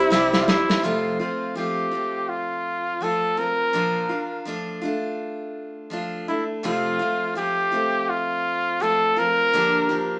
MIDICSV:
0, 0, Header, 1, 7, 480
1, 0, Start_track
1, 0, Key_signature, -1, "major"
1, 0, Tempo, 724638
1, 554, Time_signature, 4, 2, 24, 8
1, 6753, End_track
2, 0, Start_track
2, 0, Title_t, "Mandolin"
2, 0, Program_c, 0, 25
2, 0, Note_on_c, 0, 55, 85
2, 0, Note_on_c, 0, 72, 60
2, 76, Note_on_c, 0, 76, 67
2, 313, Note_off_c, 0, 72, 0
2, 316, Note_on_c, 0, 72, 59
2, 612, Note_off_c, 0, 55, 0
2, 612, Note_off_c, 0, 76, 0
2, 944, Note_off_c, 0, 72, 0
2, 6753, End_track
3, 0, Start_track
3, 0, Title_t, "Trumpet"
3, 0, Program_c, 1, 56
3, 0, Note_on_c, 1, 64, 90
3, 274, Note_off_c, 1, 64, 0
3, 278, Note_on_c, 1, 65, 57
3, 317, Note_on_c, 1, 64, 84
3, 327, Note_off_c, 1, 65, 0
3, 558, Note_on_c, 1, 65, 70
3, 568, Note_off_c, 1, 64, 0
3, 792, Note_off_c, 1, 65, 0
3, 796, Note_on_c, 1, 65, 65
3, 1018, Note_off_c, 1, 65, 0
3, 1038, Note_on_c, 1, 67, 74
3, 1519, Note_on_c, 1, 65, 78
3, 1529, Note_off_c, 1, 67, 0
3, 2006, Note_on_c, 1, 69, 83
3, 2016, Note_off_c, 1, 65, 0
3, 2243, Note_on_c, 1, 70, 84
3, 2253, Note_off_c, 1, 69, 0
3, 2958, Note_off_c, 1, 70, 0
3, 4164, Note_on_c, 1, 64, 64
3, 4270, Note_off_c, 1, 64, 0
3, 4407, Note_on_c, 1, 65, 73
3, 4854, Note_off_c, 1, 65, 0
3, 4884, Note_on_c, 1, 67, 76
3, 5363, Note_on_c, 1, 65, 83
3, 5372, Note_off_c, 1, 67, 0
3, 5844, Note_on_c, 1, 69, 87
3, 5854, Note_off_c, 1, 65, 0
3, 6085, Note_on_c, 1, 70, 92
3, 6095, Note_off_c, 1, 69, 0
3, 6753, Note_off_c, 1, 70, 0
3, 6753, End_track
4, 0, Start_track
4, 0, Title_t, "Upright piano"
4, 0, Program_c, 2, 0
4, 0, Control_c, 2, 64, 127
4, 0, Note_on_c, 2, 60, 76
4, 0, Note_on_c, 2, 64, 66
4, 0, Note_on_c, 2, 67, 84
4, 256, Note_off_c, 2, 60, 0
4, 260, Note_off_c, 2, 64, 0
4, 264, Note_off_c, 2, 67, 0
4, 564, Control_c, 2, 64, 0
4, 6753, End_track
5, 0, Start_track
5, 0, Title_t, "Steel-string acoustic guitar"
5, 0, Program_c, 3, 25
5, 0, Note_on_c, 3, 48, 75
5, 0, Note_on_c, 3, 60, 89
5, 0, Note_on_c, 3, 64, 85
5, 0, Note_on_c, 3, 67, 89
5, 68, Note_on_c, 3, 55, 67
5, 74, Note_off_c, 3, 60, 0
5, 75, Note_off_c, 3, 48, 0
5, 76, Note_off_c, 3, 64, 0
5, 77, Note_on_c, 3, 60, 71
5, 83, Note_off_c, 3, 67, 0
5, 84, Note_on_c, 3, 64, 72
5, 91, Note_on_c, 3, 67, 78
5, 551, Note_off_c, 3, 55, 0
5, 552, Note_on_c, 3, 41, 63
5, 557, Note_on_c, 3, 48, 66
5, 558, Note_on_c, 3, 53, 66
5, 559, Note_off_c, 3, 64, 0
5, 560, Note_off_c, 3, 60, 0
5, 563, Note_off_c, 3, 67, 0
5, 563, Note_on_c, 3, 57, 68
5, 565, Note_on_c, 3, 60, 68
5, 568, Note_on_c, 3, 65, 64
5, 784, Note_off_c, 3, 65, 0
5, 792, Note_on_c, 3, 65, 45
5, 793, Note_off_c, 3, 41, 0
5, 793, Note_off_c, 3, 60, 0
5, 795, Note_off_c, 3, 48, 0
5, 796, Note_off_c, 3, 53, 0
5, 798, Note_off_c, 3, 57, 0
5, 801, Note_on_c, 3, 60, 38
5, 809, Note_on_c, 3, 57, 36
5, 814, Note_on_c, 3, 53, 35
5, 1022, Note_off_c, 3, 53, 0
5, 1030, Note_on_c, 3, 53, 47
5, 1031, Note_off_c, 3, 57, 0
5, 1033, Note_off_c, 3, 65, 0
5, 1037, Note_off_c, 3, 60, 0
5, 1039, Note_on_c, 3, 57, 49
5, 1047, Note_on_c, 3, 60, 47
5, 1051, Note_on_c, 3, 65, 51
5, 1260, Note_off_c, 3, 65, 0
5, 1268, Note_on_c, 3, 65, 40
5, 1270, Note_off_c, 3, 60, 0
5, 1272, Note_off_c, 3, 53, 0
5, 1277, Note_off_c, 3, 57, 0
5, 1278, Note_on_c, 3, 60, 39
5, 1285, Note_on_c, 3, 57, 34
5, 1292, Note_on_c, 3, 53, 36
5, 1988, Note_off_c, 3, 53, 0
5, 1991, Note_on_c, 3, 53, 46
5, 1996, Note_off_c, 3, 57, 0
5, 1996, Note_off_c, 3, 60, 0
5, 1999, Note_on_c, 3, 57, 47
5, 2004, Note_on_c, 3, 60, 48
5, 2011, Note_off_c, 3, 65, 0
5, 2013, Note_on_c, 3, 65, 52
5, 2225, Note_off_c, 3, 65, 0
5, 2232, Note_off_c, 3, 53, 0
5, 2232, Note_off_c, 3, 60, 0
5, 2233, Note_on_c, 3, 65, 45
5, 2236, Note_off_c, 3, 57, 0
5, 2240, Note_on_c, 3, 60, 40
5, 2256, Note_on_c, 3, 53, 36
5, 2469, Note_off_c, 3, 53, 0
5, 2472, Note_on_c, 3, 46, 63
5, 2473, Note_off_c, 3, 65, 0
5, 2477, Note_off_c, 3, 60, 0
5, 2477, Note_on_c, 3, 53, 70
5, 2483, Note_on_c, 3, 62, 65
5, 2486, Note_on_c, 3, 65, 79
5, 2702, Note_off_c, 3, 65, 0
5, 2710, Note_on_c, 3, 65, 41
5, 2713, Note_off_c, 3, 46, 0
5, 2714, Note_off_c, 3, 62, 0
5, 2715, Note_off_c, 3, 53, 0
5, 2722, Note_on_c, 3, 62, 39
5, 2950, Note_on_c, 3, 53, 51
5, 2952, Note_off_c, 3, 65, 0
5, 2956, Note_off_c, 3, 62, 0
5, 2957, Note_on_c, 3, 57, 52
5, 2964, Note_on_c, 3, 62, 58
5, 2972, Note_on_c, 3, 65, 63
5, 3182, Note_off_c, 3, 65, 0
5, 3189, Note_on_c, 3, 65, 50
5, 3192, Note_off_c, 3, 53, 0
5, 3193, Note_off_c, 3, 62, 0
5, 3196, Note_off_c, 3, 57, 0
5, 3201, Note_on_c, 3, 62, 43
5, 3213, Note_on_c, 3, 57, 41
5, 3908, Note_on_c, 3, 53, 51
5, 3914, Note_off_c, 3, 57, 0
5, 3916, Note_on_c, 3, 57, 57
5, 3918, Note_off_c, 3, 62, 0
5, 3925, Note_on_c, 3, 62, 54
5, 3927, Note_off_c, 3, 65, 0
5, 3930, Note_on_c, 3, 65, 63
5, 4151, Note_off_c, 3, 53, 0
5, 4153, Note_off_c, 3, 62, 0
5, 4155, Note_off_c, 3, 57, 0
5, 4160, Note_on_c, 3, 62, 42
5, 4162, Note_off_c, 3, 65, 0
5, 4170, Note_on_c, 3, 57, 41
5, 4392, Note_on_c, 3, 41, 61
5, 4394, Note_off_c, 3, 57, 0
5, 4395, Note_on_c, 3, 48, 70
5, 4398, Note_off_c, 3, 62, 0
5, 4398, Note_on_c, 3, 53, 74
5, 4402, Note_on_c, 3, 57, 71
5, 4403, Note_on_c, 3, 60, 82
5, 4407, Note_on_c, 3, 65, 76
5, 4623, Note_off_c, 3, 65, 0
5, 4631, Note_off_c, 3, 60, 0
5, 4631, Note_on_c, 3, 65, 48
5, 4634, Note_off_c, 3, 41, 0
5, 4635, Note_off_c, 3, 48, 0
5, 4637, Note_off_c, 3, 53, 0
5, 4639, Note_off_c, 3, 57, 0
5, 4639, Note_on_c, 3, 60, 43
5, 4648, Note_on_c, 3, 57, 39
5, 4653, Note_on_c, 3, 53, 37
5, 4862, Note_off_c, 3, 53, 0
5, 4870, Note_on_c, 3, 53, 47
5, 4871, Note_off_c, 3, 57, 0
5, 4873, Note_off_c, 3, 65, 0
5, 4877, Note_off_c, 3, 60, 0
5, 4879, Note_on_c, 3, 57, 50
5, 4886, Note_on_c, 3, 60, 52
5, 4892, Note_on_c, 3, 65, 53
5, 5102, Note_off_c, 3, 65, 0
5, 5110, Note_off_c, 3, 60, 0
5, 5110, Note_on_c, 3, 65, 42
5, 5112, Note_off_c, 3, 53, 0
5, 5117, Note_off_c, 3, 57, 0
5, 5118, Note_on_c, 3, 60, 39
5, 5126, Note_on_c, 3, 57, 39
5, 5133, Note_on_c, 3, 53, 38
5, 5827, Note_off_c, 3, 53, 0
5, 5829, Note_on_c, 3, 53, 46
5, 5832, Note_off_c, 3, 57, 0
5, 5837, Note_off_c, 3, 60, 0
5, 5840, Note_on_c, 3, 57, 54
5, 5846, Note_on_c, 3, 60, 53
5, 5851, Note_off_c, 3, 65, 0
5, 5854, Note_on_c, 3, 65, 55
5, 6063, Note_off_c, 3, 65, 0
5, 6070, Note_on_c, 3, 65, 44
5, 6072, Note_off_c, 3, 53, 0
5, 6072, Note_off_c, 3, 60, 0
5, 6078, Note_off_c, 3, 57, 0
5, 6080, Note_on_c, 3, 60, 45
5, 6092, Note_on_c, 3, 53, 37
5, 6313, Note_off_c, 3, 53, 0
5, 6313, Note_off_c, 3, 65, 0
5, 6314, Note_on_c, 3, 43, 65
5, 6316, Note_on_c, 3, 50, 65
5, 6318, Note_off_c, 3, 60, 0
5, 6321, Note_on_c, 3, 53, 66
5, 6324, Note_on_c, 3, 58, 70
5, 6327, Note_on_c, 3, 62, 69
5, 6330, Note_on_c, 3, 67, 73
5, 6543, Note_off_c, 3, 67, 0
5, 6550, Note_off_c, 3, 62, 0
5, 6551, Note_on_c, 3, 67, 46
5, 6555, Note_off_c, 3, 43, 0
5, 6556, Note_off_c, 3, 50, 0
5, 6558, Note_off_c, 3, 53, 0
5, 6558, Note_off_c, 3, 58, 0
5, 6558, Note_on_c, 3, 62, 45
5, 6566, Note_on_c, 3, 58, 42
5, 6573, Note_on_c, 3, 53, 39
5, 6753, Note_off_c, 3, 53, 0
5, 6753, Note_off_c, 3, 58, 0
5, 6753, Note_off_c, 3, 62, 0
5, 6753, Note_off_c, 3, 67, 0
5, 6753, End_track
6, 0, Start_track
6, 0, Title_t, "Upright bass"
6, 0, Program_c, 4, 32
6, 0, Note_on_c, 4, 36, 99
6, 288, Note_off_c, 4, 36, 0
6, 312, Note_on_c, 4, 31, 80
6, 534, Note_off_c, 4, 31, 0
6, 6753, End_track
7, 0, Start_track
7, 0, Title_t, "Drums"
7, 75, Note_on_c, 9, 82, 65
7, 78, Note_on_c, 9, 38, 57
7, 141, Note_off_c, 9, 82, 0
7, 144, Note_off_c, 9, 38, 0
7, 219, Note_on_c, 9, 82, 54
7, 221, Note_on_c, 9, 38, 69
7, 286, Note_off_c, 9, 82, 0
7, 287, Note_off_c, 9, 38, 0
7, 317, Note_on_c, 9, 82, 50
7, 318, Note_on_c, 9, 38, 90
7, 383, Note_off_c, 9, 82, 0
7, 384, Note_off_c, 9, 38, 0
7, 461, Note_on_c, 9, 82, 52
7, 462, Note_on_c, 9, 38, 90
7, 527, Note_off_c, 9, 82, 0
7, 528, Note_off_c, 9, 38, 0
7, 6753, End_track
0, 0, End_of_file